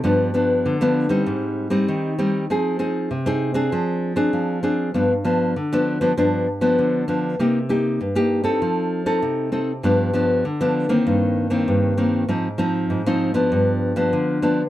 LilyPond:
\new Staff \with { instrumentName = "Nylon-string guitar" } { \time 4/4 \key g \phrygian \tempo 4 = 98 << { <f b d'>8 <f b d'>8. <f b d'>8 <g c' ees'>4 <g c' ees'>8. <g c' ees'>8 | <c' ees' aes'>8 <c' ees' aes'>8 r16 <c' ees' aes'>8 <c' d' aes'>4 <c' d' aes'>8. <c' d' aes'>8 | <f b d'>16 r16 <f b d'>8 r16 <f b d'>8 <f b d'>16 <f b d'>8 r16 <f b d'>8. <f b d'>8 | <bes ees' g'>16 r16 <bes ees' g'>8 r16 <bes ees' g'>8 <c' ees' a'>4 <c' ees' a'>8. <c' ees' a'>16 r16 |
<f b d'>8 <f b d'>8 r16 <f b d'>8 <ees bes c'>4 <ees bes c'>8. <ees bes c'>8 | <f c' ees'>16 r16 <f c' ees'>8. <f c' ees'>8 <f b d'>4 <f b d'>8. <f b d'>16 r16 | } \\ { g,4 d4 aes,4 ees4 | f4 c4 f4 f4 | g,4 d4 g,4 d4 | c4 g,4 f4 c4 |
g,4 d4 g,4 g,4 | aes,4 aes,4 g,4 d4 | } >> }